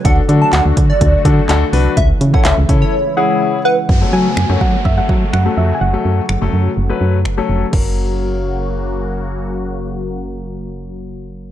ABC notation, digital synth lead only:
X:1
M:4/4
L:1/16
Q:1/4=125
K:F#m
V:1 name="Digital synth lead"
f z2 a f z2 d3 z6 | e z2 f e z2 c3 z4 B z | z16 | z16 |
z16 | z16 |]